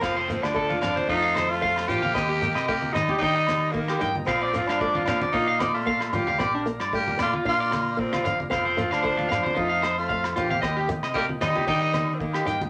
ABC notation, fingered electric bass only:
X:1
M:4/4
L:1/16
Q:"Swing 16ths" 1/4=113
K:Fmix
V:1 name="Fingered electric bass" clef=bass
F,,,3 D,,3 F,, z F,,6 A,,,2 | E,,3 C,3 E, z E,6 G,,2 | B,,,3 G,,3 B,, z B,,6 D,,2 | B,,,3 G,,3 B,, z B,,6 G,,,2 |
F,,,3 D,,3 F,, z F,,6 A,,,2 | E,,3 C,3 E, z E,6 G,,2 |]